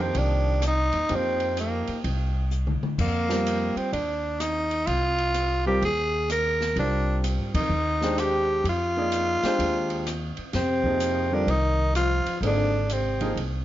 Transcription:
0.00 grand piano D#3 F3 A#3 G4, tenor saxophone C4
0.15 upright bass C2, tenor saxophone D4, ride
0.62 cross-stick, hi-hat pedal, ride
0.67 tenor saxophone D#4
0.93 upright bass D#2, ride
1.09 upright bass F2, grand piano F3 A#3 D#4 G4, ride
1.15 tenor saxophone C4
1.40 ride
1.57 tenor saxophone A#3, hi-hat pedal, ride
1.87 muted upright bass stroke, ride
2.04 upright bass C2, ride
2.51 hi-hat pedal
2.67 mid tom
2.82 muted upright bass stroke, mid tom
2.98 upright bass F2, tenor saxophone A#3, kick, crash
3.29 grand piano G3 C4 F4 A#4, snare
3.46 hi-hat pedal, ride
3.76 tenor saxophone C4, muted upright bass stroke, ride
3.92 upright bass D#2, tenor saxophone D4, ride
4.40 tenor saxophone D#4, cross-stick, hi-hat pedal, ride
4.71 ride
4.87 upright bass C2, tenor saxophone F4, ride
5.18 ride
5.34 hi-hat pedal, ride
5.66 grand piano G3 C4 F4 A#4, tenor saxophone G4
5.82 upright bass D#2, tenor saxophone G#4, ride
6.30 tenor saxophone A#4, cross-stick, hi-hat pedal, ride
6.61 snare
6.76 upright bass C2, grand piano G3 C4 F4 A#4, tenor saxophone D4, ride
7.24 hi-hat pedal, ride
7.38 upright bass G#2
7.54 upright bass C3, tenor saxophone D#4, kick, ride
7.69 upright bass D#2
8.02 grand piano G#3 D4 G4 C5, snare
8.18 tenor saxophone G4, cross-stick, hi-hat pedal, ride
8.64 upright bass F2, ride
8.69 tenor saxophone F4
8.97 grand piano A#3 D#4 G#4 D5
9.12 hi-hat pedal, ride
9.43 grand piano G#3 D4 G4 C5, muted upright bass stroke, snare, ride
9.59 upright bass D#2, ride
9.90 ride
10.07 cross-stick, hi-hat pedal, ride
10.37 muted upright bass stroke, ride
10.53 upright bass F2, trombone C3, tenor saxophone C4, snare, ride
10.84 grand piano F3 A#3 D#4 G#4, kick
11.00 hi-hat pedal, ride
11.31 trombone D3, grand piano G3 C4 F4 A#4, tenor saxophone D4
11.47 upright bass C2, trombone D#3, tenor saxophone D#4, ride
11.95 trombone F3, tenor saxophone F4, cross-stick, hi-hat pedal, ride
12.26 muted upright bass stroke, ride
12.41 upright bass G#1, trombone D3, grand piano F3 A#3 D#4 G#4, ride
12.46 tenor saxophone D4
12.89 trombone C3, tenor saxophone C4, hi-hat pedal, ride
13.20 grand piano F3 A#3 D#4 G#4, ride
13.36 upright bass C2, ride

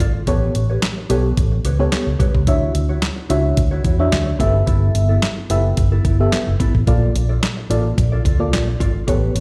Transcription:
0.00 fingered electric bass G#1, clean electric guitar F4 A4 D5, kick, closed hi-hat
0.15 muted clean electric guitar stroke
0.27 fingered electric bass A1, fm electric piano B3 G4 A4 C#5, clean electric guitar G4 B4 C#5, kick, closed hi-hat
0.55 fingered electric bass A1, muted clean electric guitar stroke, closed hi-hat
0.70 clean electric guitar G4 B4 C#5
0.82 muted clean electric guitar stroke, snare, clap, closed hi-hat
0.97 muted clean electric guitar stroke
1.10 fingered electric bass B1, fm electric piano B3 G4 A4 C#5, clean electric guitar G4 B4 C#5, closed hi-hat
1.25 muted clean electric guitar stroke
1.37 fingered electric bass A1, muted clean electric guitar stroke, kick, closed hi-hat
1.52 muted clean electric guitar stroke
1.64 fingered electric bass C#2, clean electric guitar G4 B4 C#5, closed hi-hat
1.79 fm electric piano B3 G4 A4 C#5, muted clean electric guitar stroke
1.92 snare, clap, closed hi-hat
2.07 fingered electric bass C#2, muted clean electric guitar stroke
2.19 fingered electric bass C2, clean electric guitar G4 B4 C#5, kick, closed hi-hat
2.35 fingered electric bass C#2, muted clean electric guitar stroke, kick
2.47 fingered electric bass D2, fm electric piano D4 F#4 C#5 E5, clean electric guitar E4 F#4 C#5, kick, closed hi-hat
2.74 fingered electric bass D2, muted clean electric guitar stroke, closed hi-hat
2.89 clean electric guitar E4 F#4 C#5
3.02 muted clean electric guitar stroke, snare, clap, closed hi-hat
3.16 muted clean electric guitar stroke
3.30 fingered electric bass C#2, fm electric piano D4 F#4 C#5 E5, clean electric guitar E4 F#4 C#5, closed hi-hat
3.44 muted clean electric guitar stroke
3.57 fingered electric bass D2, muted clean electric guitar stroke, kick, closed hi-hat
3.71 clean electric guitar E4 F#4 C#5
3.84 fingered electric bass E2, clean electric guitar E4 F#4 C#5, kick, closed hi-hat
3.99 fm electric piano D4 F#4 C#5 E5, muted clean electric guitar stroke
4.12 fingered electric bass D2, snare, clap, closed hi-hat
4.26 muted clean electric guitar stroke
4.39 fingered electric bass G1, fm electric piano A3 G4 A4 E5, clean electric guitar B3 E4 A4, kick, closed hi-hat
4.46 fm electric piano B3
4.54 muted clean electric guitar stroke
4.67 fingered electric bass G1, clean electric guitar B3 E4 A4, kick, closed hi-hat
4.95 fingered electric bass G1, muted clean electric guitar stroke, closed hi-hat
5.09 clean electric guitar B3 E4 A4
5.22 snare, clap, closed hi-hat
5.37 muted clean electric guitar stroke
5.50 fingered electric bass F#1, clean electric guitar B3 E4 A4, fm electric piano B3 G4 A4 E5, closed hi-hat
5.64 muted clean electric guitar stroke
5.77 fingered electric bass G1, muted clean electric guitar stroke, kick, closed hi-hat
5.92 clean electric guitar B3 E4 A4
6.05 fingered electric bass G1, clean electric guitar B3 E4 A4, kick, closed hi-hat
6.19 fm electric piano B3 G4 A4 E5, muted clean electric guitar stroke
6.32 snare, clap, closed hi-hat
6.47 fingered electric bass F#1, muted clean electric guitar stroke
6.60 fingered electric bass G#1, clean electric guitar B3 E4 A4, kick, closed hi-hat
6.74 fingered electric bass A1, muted clean electric guitar stroke, kick
6.87 fingered electric bass A#1, fm electric piano A#3 F4 A4 D5, clean electric guitar F4 A4 D5, kick, closed hi-hat
7.14 fingered electric bass A#1, muted clean electric guitar stroke, closed hi-hat
7.29 clean electric guitar F4 A4 D5
7.42 muted clean electric guitar stroke, snare, clap, closed hi-hat
7.57 muted clean electric guitar stroke
7.70 fingered electric bass A1, fm electric piano A#3 F4 A4 D5, clean electric guitar F4 A4 D5, closed hi-hat
7.84 muted clean electric guitar stroke
7.97 fingered electric bass A#1, muted clean electric guitar stroke, kick, closed hi-hat
8.12 clean electric guitar F4 A4 D5
8.25 fingered electric bass D2, clean electric guitar F4 A4 D5, kick, closed hi-hat
8.40 fm electric piano A#3 F4 A4 D5, muted clean electric guitar stroke
8.52 fingered electric bass A#1, snare, clap, closed hi-hat
8.68 muted clean electric guitar stroke
8.80 fingered electric bass G#1, clean electric guitar F4 A4 D5, kick, closed hi-hat
8.95 muted clean electric guitar stroke
9.07 fingered electric bass A1, fm electric piano B3 G4 A4 C#5, clean electric guitar G4 B4 C#5, kick, closed hi-hat
9.35 fingered electric bass A1, muted clean electric guitar stroke, closed hi-hat

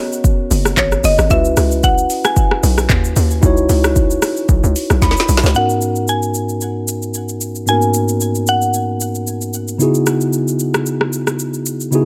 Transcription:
Already playing: tine electric piano B3 C#4 F#4 C#5
0.12 shaker
0.24 kick, shaker
0.51 log drum bass F#1, open hi-hat, shaker
0.65 cross-stick, shaker
0.77 log drum bass G#1, synth pluck C#5, kick, clap, shaker
0.92 cross-stick, shaker
1.04 log drum bass F#1, synth pluck D#5, open hi-hat, shaker
1.18 log drum bass G#1, cross-stick, shaker
1.29 log drum bass C#2, tine electric piano C#4 E4 F#4, synth pluck E5, kick, shaker
1.33 tine electric piano B4
1.45 shaker
1.57 log drum bass C#2, cross-stick, open hi-hat, shaker
1.71 shaker
1.83 synth pluck F#5, kick, shaker
1.98 shaker
2.10 open hi-hat, shaker
2.24 synth pluck G#5, cross-stick, shaker
2.36 kick, shaker
2.51 cross-stick
2.63 log drum bass B1, open hi-hat, shaker
2.78 cross-stick, shaker
2.89 log drum bass D#2, kick, clap, shaker
3.04 shaker
3.16 log drum bass D#2, open hi-hat, shaker
3.31 shaker
3.42 log drum bass C#2, tine electric piano D#4 E4 F#4, kick, shaker
3.46 tine electric piano C#5
3.57 shaker
3.69 log drum bass C#2, open hi-hat, shaker
3.84 cross-stick, shaker
3.96 kick, shaker
4.11 shaker
4.22 cross-stick, open hi-hat, shaker
4.37 shaker
4.49 log drum bass B1, kick, shaker
4.64 log drum bass C#2, shaker
4.76 open hi-hat, shaker
4.90 log drum bass B1, cross-stick, shaker
5.02 log drum bass C#2, tine electric piano B5, kick, snare, shaker
5.11 snare
5.17 snare, shaker
5.29 log drum bass B1, open hi-hat, shaker
5.37 snare
5.43 log drum bass C#2, snare, shaker
5.54 tine electric piano G#2 B3 C#4 D#4 F#4, synth pluck F#5, shaker
5.58 tine electric piano A#4
5.69 shaker
5.81 shaker
5.96 shaker
6.08 synth pluck G#5, shaker
6.22 shaker
6.34 shaker
6.49 shaker
6.61 shaker
6.88 shaker
7.02 shaker
7.14 shaker
7.29 shaker
7.41 shaker
7.55 shaker
7.66 tine electric piano G#2 A#3 C#4 D#4 F#4, synth pluck G#5, shaker
7.70 tine electric piano B3 A#4
7.82 shaker
7.94 shaker
8.08 shaker
8.21 shaker
8.35 shaker
8.47 synth pluck F#5, shaker
8.62 shaker
8.74 shaker
9.00 shaker
9.15 shaker
9.27 shaker
9.41 shaker
9.54 shaker
9.68 shaker
9.78 tine electric piano C#3 B3 D#4 E4 F#4, shaker
9.82 tine electric piano G#4
9.95 shaker
10.06 cross-stick, shaker
10.21 shaker
10.33 shaker
10.48 shaker
10.59 shaker
10.74 cross-stick, shaker
10.86 shaker
11.01 cross-stick
11.13 shaker
11.27 cross-stick, shaker
11.39 shaker
11.54 shaker
11.66 shaker
11.80 shaker
11.91 tine electric piano C#3 B3 D#4 E4 F#4, shaker
11.95 tine electric piano G#4

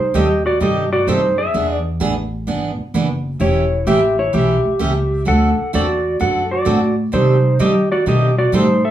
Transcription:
Already playing: electric slide guitar D#4 C5
0.14 upright bass D#2, steel-string acoustic guitar C3 D#3 G3 C4 G4 A4, electric slide guitar G4 D#5
0.46 electric slide guitar F#4 D5
0.60 upright bass G2, steel-string acoustic guitar C3 D#3 G3 C4 G4 A4, electric slide guitar G4 D#5
0.93 electric slide guitar F#4 D5
1.07 upright bass F#2, steel-string acoustic guitar C3 D#3 G3 C4 G4 A4, electric slide guitar D#4 C5
1.38 electric slide guitar G#4 E5
1.54 upright bass E2, steel-string acoustic guitar E3 B3 D4 G#4
2.00 upright bass A1, steel-string acoustic guitar E3 B3 D4 G#4
2.47 upright bass G#1, steel-string acoustic guitar E3 B3 D4 G#4
2.78 muted upright bass stroke
2.94 upright bass F#1, steel-string acoustic guitar E3 B3 D4 G#4
3.40 upright bass E1, steel-string acoustic guitar E3 A3 C#4 G4, electric slide guitar E4 C#5
3.87 upright bass A1, steel-string acoustic guitar E3 A3 C#4 G4, electric slide guitar G4 E5
4.19 electric slide guitar E4 C#5
4.33 upright bass B1, steel-string acoustic guitar E3 A3 C#4 G4, electric slide guitar G4 E5
4.65 muted upright bass stroke
4.79 upright bass C#2, steel-string acoustic guitar E3 A3 C#4 G4
5.25 upright bass D2, steel-string acoustic guitar D3 A3 C4 F#4 A4, electric slide guitar A4 F#5
5.58 muted upright bass stroke
5.73 upright bass E2, steel-string acoustic guitar D3 A3 C4 F#4 A4, electric slide guitar F#4 D5
6.20 upright bass F#2, steel-string acoustic guitar D3 A3 C4 F#4 A4, electric slide guitar A4 F#5
6.51 electric slide guitar F#4 D5
6.65 upright bass A2, steel-string acoustic guitar D3 A3 C4 F#4 A4
7.12 steel-string acoustic guitar C3 D#3 G3 C4 G4 A4, upright bass C3, electric slide guitar D#4 C5
7.59 steel-string acoustic guitar C3 D#3 G3 C4 G4 A4, upright bass D#3, electric slide guitar G4 D#5
7.92 electric slide guitar F#4 D5
8.06 upright bass B2, steel-string acoustic guitar C3 D#3 G3 C4 G4 A4, electric slide guitar G4 D#5
8.38 electric slide guitar F#4 D5
8.52 upright bass A2, steel-string acoustic guitar C3 D#3 G3 C4 G4 A4, electric slide guitar D#4 C5
8.84 electric slide guitar A4 E5

